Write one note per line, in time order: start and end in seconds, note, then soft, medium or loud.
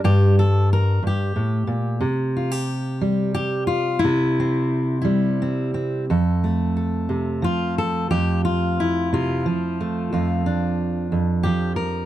0.00 0.42 G3 medium
0.00 1.17 D4 soft
0.04 1.01 G2 medium
0.04 0.38 G4 medium
0.39 0.71 A4 medium
0.73 1.05 A#4 medium
1.03 1.35 G2 medium
1.07 2.05 G4 medium
1.36 1.67 A2 medium
1.67 2.02 A#2 medium
2.00 4.02 C3 medium
2.37 2.51 F4 medium
2.51 3.33 G4 soft
3.01 3.99 G3 medium
3.34 3.67 G4 loud
3.67 4.02 F4 medium
3.99 5.00 E4 medium
4.04 6.09 C3 medium
4.40 5.41 C4 medium
5.01 6.04 G3 medium
5.01 6.06 E4 medium
5.42 5.73 C4 soft
5.74 6.04 C4 soft
6.10 8.10 F2 medium
6.10 6.76 A4 soft
6.44 9.80 A3 soft
6.77 7.44 A4 soft
7.09 7.43 C3 medium
7.42 9.45 F3 medium
7.42 7.77 F4 medium
7.78 8.10 A4 medium
8.11 10.12 F2 medium
8.11 8.44 G4 medium
8.45 9.11 F4 medium
8.80 9.79 E4 medium
9.13 9.45 C3 medium
9.13 10.12 F4 medium
9.46 11.45 F3 medium
9.80 10.46 A3 soft
10.13 11.11 F2 medium
10.13 12.05 F4 soft
10.46 12.05 D4 soft
11.12 12.05 F2 medium
11.43 12.05 F3 medium
11.43 11.76 G4 medium
11.76 12.05 A#4 medium